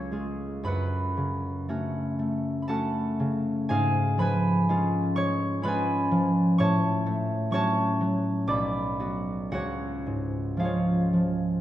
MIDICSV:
0, 0, Header, 1, 2, 480
1, 0, Start_track
1, 0, Key_signature, 3, "minor"
1, 0, Tempo, 1052632
1, 301, Time_signature, 3, 2, 24, 8
1, 771, Tempo, 1000000
1, 2211, Tempo, 950872
1, 4131, Tempo, 1056338
1, 5546, End_track
2, 0, Start_track
2, 0, Title_t, "Harp"
2, 0, Program_c, 0, 46
2, 0, Note_on_c, 0, 37, 39
2, 53, Note_on_c, 0, 56, 30
2, 57, Note_on_c, 0, 65, 30
2, 57, Note_on_c, 0, 68, 32
2, 289, Note_on_c, 0, 42, 43
2, 294, Note_on_c, 0, 83, 80
2, 300, Note_on_c, 0, 71, 55
2, 310, Note_on_c, 0, 78, 54
2, 317, Note_off_c, 0, 37, 0
2, 320, Note_off_c, 0, 56, 0
2, 321, Note_off_c, 0, 65, 0
2, 322, Note_off_c, 0, 68, 0
2, 534, Note_on_c, 0, 49, 35
2, 769, Note_on_c, 0, 57, 39
2, 772, Note_on_c, 0, 61, 40
2, 776, Note_on_c, 0, 66, 41
2, 1005, Note_off_c, 0, 57, 0
2, 1011, Note_on_c, 0, 57, 37
2, 1213, Note_off_c, 0, 83, 0
2, 1218, Note_on_c, 0, 83, 45
2, 1244, Note_off_c, 0, 57, 0
2, 1245, Note_off_c, 0, 78, 0
2, 1245, Note_on_c, 0, 81, 65
2, 1246, Note_off_c, 0, 61, 0
2, 1248, Note_off_c, 0, 66, 0
2, 1249, Note_on_c, 0, 57, 37
2, 1250, Note_on_c, 0, 61, 38
2, 1251, Note_on_c, 0, 78, 48
2, 1253, Note_on_c, 0, 69, 50
2, 1254, Note_on_c, 0, 66, 40
2, 1277, Note_off_c, 0, 83, 0
2, 1488, Note_off_c, 0, 49, 0
2, 1494, Note_on_c, 0, 49, 42
2, 1730, Note_on_c, 0, 80, 80
2, 1734, Note_on_c, 0, 44, 53
2, 1736, Note_on_c, 0, 68, 56
2, 1738, Note_on_c, 0, 77, 59
2, 1752, Note_off_c, 0, 81, 0
2, 1754, Note_off_c, 0, 57, 0
2, 1755, Note_off_c, 0, 69, 0
2, 1755, Note_off_c, 0, 78, 0
2, 1756, Note_off_c, 0, 49, 0
2, 1757, Note_off_c, 0, 42, 0
2, 1757, Note_off_c, 0, 66, 0
2, 1965, Note_on_c, 0, 53, 46
2, 1969, Note_off_c, 0, 80, 0
2, 1970, Note_off_c, 0, 71, 0
2, 1971, Note_on_c, 0, 83, 81
2, 1976, Note_on_c, 0, 71, 64
2, 1984, Note_on_c, 0, 80, 67
2, 2209, Note_off_c, 0, 61, 0
2, 2210, Note_on_c, 0, 56, 49
2, 2214, Note_on_c, 0, 61, 49
2, 2218, Note_on_c, 0, 65, 54
2, 2446, Note_off_c, 0, 56, 0
2, 2447, Note_on_c, 0, 85, 90
2, 2450, Note_on_c, 0, 56, 44
2, 2455, Note_on_c, 0, 73, 70
2, 2678, Note_off_c, 0, 61, 0
2, 2680, Note_on_c, 0, 61, 45
2, 2681, Note_off_c, 0, 83, 0
2, 2686, Note_off_c, 0, 71, 0
2, 2687, Note_off_c, 0, 56, 0
2, 2687, Note_on_c, 0, 83, 100
2, 2688, Note_off_c, 0, 80, 0
2, 2690, Note_off_c, 0, 65, 0
2, 2692, Note_on_c, 0, 56, 47
2, 2693, Note_on_c, 0, 71, 75
2, 2696, Note_on_c, 0, 65, 52
2, 2709, Note_on_c, 0, 80, 72
2, 2923, Note_off_c, 0, 53, 0
2, 2929, Note_on_c, 0, 53, 50
2, 3160, Note_off_c, 0, 85, 0
2, 3166, Note_on_c, 0, 85, 91
2, 3169, Note_off_c, 0, 73, 0
2, 3171, Note_on_c, 0, 45, 56
2, 3175, Note_on_c, 0, 73, 77
2, 3176, Note_on_c, 0, 81, 69
2, 3187, Note_off_c, 0, 44, 0
2, 3188, Note_off_c, 0, 68, 0
2, 3188, Note_off_c, 0, 77, 0
2, 3188, Note_off_c, 0, 83, 0
2, 3189, Note_off_c, 0, 53, 0
2, 3190, Note_off_c, 0, 71, 0
2, 3191, Note_off_c, 0, 56, 0
2, 3191, Note_off_c, 0, 80, 0
2, 3192, Note_off_c, 0, 65, 0
2, 3409, Note_on_c, 0, 57, 47
2, 3633, Note_off_c, 0, 85, 0
2, 3633, Note_on_c, 0, 54, 47
2, 3637, Note_off_c, 0, 61, 0
2, 3638, Note_off_c, 0, 81, 0
2, 3639, Note_off_c, 0, 73, 0
2, 3639, Note_on_c, 0, 85, 98
2, 3640, Note_on_c, 0, 61, 45
2, 3648, Note_on_c, 0, 66, 50
2, 3648, Note_on_c, 0, 73, 75
2, 3654, Note_on_c, 0, 81, 76
2, 3878, Note_off_c, 0, 54, 0
2, 3884, Note_on_c, 0, 54, 43
2, 4121, Note_on_c, 0, 35, 52
2, 4122, Note_on_c, 0, 86, 81
2, 4127, Note_on_c, 0, 74, 65
2, 4134, Note_on_c, 0, 83, 66
2, 4148, Note_off_c, 0, 85, 0
2, 4149, Note_off_c, 0, 61, 0
2, 4150, Note_off_c, 0, 73, 0
2, 4150, Note_off_c, 0, 81, 0
2, 4151, Note_off_c, 0, 45, 0
2, 4151, Note_off_c, 0, 57, 0
2, 4356, Note_off_c, 0, 66, 0
2, 4359, Note_on_c, 0, 59, 38
2, 4362, Note_on_c, 0, 66, 39
2, 4595, Note_on_c, 0, 37, 46
2, 4596, Note_on_c, 0, 78, 71
2, 4597, Note_off_c, 0, 66, 0
2, 4603, Note_on_c, 0, 66, 54
2, 4609, Note_on_c, 0, 73, 57
2, 4618, Note_off_c, 0, 86, 0
2, 4620, Note_off_c, 0, 35, 0
2, 4620, Note_off_c, 0, 74, 0
2, 4621, Note_off_c, 0, 59, 0
2, 4621, Note_off_c, 0, 83, 0
2, 4622, Note_off_c, 0, 54, 0
2, 4844, Note_on_c, 0, 44, 36
2, 5074, Note_on_c, 0, 53, 37
2, 5084, Note_on_c, 0, 56, 39
2, 5087, Note_on_c, 0, 77, 59
2, 5088, Note_off_c, 0, 73, 0
2, 5093, Note_on_c, 0, 61, 40
2, 5102, Note_on_c, 0, 65, 44
2, 5111, Note_on_c, 0, 73, 44
2, 5324, Note_off_c, 0, 53, 0
2, 5329, Note_on_c, 0, 53, 33
2, 5427, Note_off_c, 0, 78, 0
2, 5546, Note_off_c, 0, 37, 0
2, 5546, Note_off_c, 0, 44, 0
2, 5546, Note_off_c, 0, 53, 0
2, 5546, Note_off_c, 0, 56, 0
2, 5546, Note_off_c, 0, 61, 0
2, 5546, Note_off_c, 0, 65, 0
2, 5546, Note_off_c, 0, 66, 0
2, 5546, Note_off_c, 0, 73, 0
2, 5546, Note_off_c, 0, 77, 0
2, 5546, End_track
0, 0, End_of_file